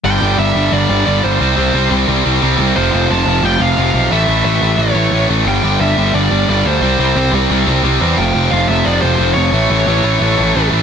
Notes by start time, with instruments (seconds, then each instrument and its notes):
0.04 picked electric bass G1, distorted electric guitar G2 D3 G3, lead electric guitar G5
0.21 picked electric bass G1, distorted electric guitar G2 D3 G3
0.37 picked electric bass G1, distorted electric guitar G2 D3 G3, lead electric guitar E5
0.55 picked electric bass G1, distorted electric guitar G2 D3 G3
0.72 picked electric bass G1, distorted electric guitar G2 D3 G3, lead electric guitar D5
0.89 picked electric bass G1, distorted electric guitar G2 D3 G3
1.06 picked electric bass G1, distorted electric guitar G2 D3 G3, lead electric guitar D5
1.24 picked electric bass G1, distorted electric guitar G2 D3 G3, lead electric guitar C5
1.41 picked electric bass C2, distorted electric guitar C3 G3 C4
1.57 picked electric bass C2, distorted electric guitar C3 G3 C4
1.74 picked electric bass C2, distorted electric guitar C3 G3 C4
1.90 picked electric bass C2, distorted electric guitar C3 G3 C4
2.07 picked electric bass C2, distorted electric guitar C3 G3 C4
2.25 picked electric bass C2, distorted electric guitar C3 G3 C4
2.41 picked electric bass C2, distorted electric guitar C3 G3 C4
2.57 picked electric bass C2, distorted electric guitar C3 G3 C4
2.75 picked electric bass F1, distorted electric guitar F2 C3 F3, lead electric guitar C5
2.90 picked electric bass F1, distorted electric guitar F2 C3 F3
3.09 picked electric bass F1, distorted electric guitar F2 C3 F3, lead electric guitar A5
3.26 picked electric bass F1, distorted electric guitar F2 C3 F3
3.43 picked electric bass F1, distorted electric guitar F2 C3 F3, lead electric guitar G5
3.59 picked electric bass F1, distorted electric guitar F2 C3 F3, lead electric guitar F5
3.77 picked electric bass F1, distorted electric guitar F2 C3 F3
3.94 picked electric bass B1, distorted electric guitar F2 C3 F3
4.11 picked electric bass A1, distorted electric guitar A2 E3 A3, lead electric guitar E5
4.27 picked electric bass A1, distorted electric guitar A2 E3 A3
4.45 picked electric bass A1, distorted electric guitar A2 E3 A3, lead electric guitar E5
4.62 picked electric bass A1, distorted electric guitar A2 E3 A3
4.77 picked electric bass A1, distorted electric guitar A2 E3 A3, lead electric guitar C#5
4.95 picked electric bass A1, distorted electric guitar A2 E3 A3
5.11 picked electric bass A1, distorted electric guitar A2 E3 A3
5.29 picked electric bass A1, distorted electric guitar A2 E3 A3
5.46 picked electric bass G1, distorted electric guitar G2 D3 G3, lead electric guitar G5
5.63 picked electric bass G1, distorted electric guitar G2 D3 G3
5.80 picked electric bass G1, distorted electric guitar G2 D3 G3, lead electric guitar E5
5.96 picked electric bass G1, distorted electric guitar G2 D3 G3
6.14 picked electric bass G1, distorted electric guitar G2 D3 G3, lead electric guitar D5
6.31 picked electric bass G1, distorted electric guitar G2 D3 G3
6.48 picked electric bass G1, distorted electric guitar G2 D3 G3, lead electric guitar D5
6.65 picked electric bass D2, distorted electric guitar G2 D3 G3, lead electric guitar C5
6.82 picked electric bass C2, distorted electric guitar C3 G3 C4
6.99 picked electric bass C2, distorted electric guitar C3 G3 C4
7.16 picked electric bass C2, distorted electric guitar C3 G3 C4
7.32 picked electric bass C2, distorted electric guitar C3 G3 C4
7.50 picked electric bass C2, distorted electric guitar C3 G3 C4
7.66 picked electric bass C2, distorted electric guitar C3 G3 C4
7.83 picked electric bass C2, distorted electric guitar C3 G3 C4
8.01 picked electric bass E2, distorted electric guitar C3 G3 C4
8.18 picked electric bass F1, distorted electric guitar F2 C3 F3, lead electric guitar G5
8.35 picked electric bass F1, distorted electric guitar F2 C3 F3
8.52 picked electric bass F1, distorted electric guitar F2 C3 F3, lead electric guitar F5
8.68 picked electric bass F1, distorted electric guitar F2 C3 F3, lead electric guitar E5
8.85 picked electric bass F1, distorted electric guitar F2 C3 F3, lead electric guitar D5
9.02 picked electric bass F1, distorted electric guitar F2 C3 F3, lead electric guitar C5
9.19 picked electric bass F1, distorted electric guitar F2 C3 F3
9.34 picked electric bass F1, distorted electric guitar F2 C3 F3, lead electric guitar C#5
9.52 picked electric bass A1, distorted electric guitar A2 E3 A3
9.70 picked electric bass A1, distorted electric guitar A2 E3 A3
9.87 picked electric bass A1, distorted electric guitar A2 E3 A3
10.03 picked electric bass A1, distorted electric guitar A2 E3 A3
10.19 picked electric bass A1, distorted electric guitar A2 E3 A3
10.36 picked electric bass A1, distorted electric guitar A2 E3 A3
10.53 picked electric bass A1, distorted electric guitar A2 E3 A3
10.70 picked electric bass A1, distorted electric guitar A2 E3 A3